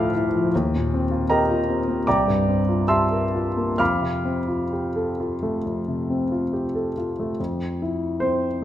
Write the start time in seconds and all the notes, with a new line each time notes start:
Already playing: D2 A2 F3 A3 E4 F4 A4 F5 G5 A5 B5 C6 D6 E6 F6 G6 A6
0.16 E4
0.35 F3
0.55 D#2
0.76 A#2
0.94 C4
1.11 F4
1.30 G4 A#4 D#5 G5 A#5
1.50 F4
1.69 C4
1.88 A#3
2.07 C2 D5 G5 A#5 D6
2.28 G2
2.48 C4
2.69 F4
2.88 G4 E5 A5 C6 E6
3.12 A#4
3.35 F4
3.57 A#3
3.78 F2 F5 B5 D6 F6
4.01 C3
4.25 C4
4.48 F4
4.73 G4
4.96 A4
5.20 F4
5.43 A3
5.66 F2
5.88 C3
6.10 C4
6.32 F4
6.53 G4
6.75 A4
6.98 F4
7.20 A3
7.40 F2
7.82 E4
8.20 C4 C5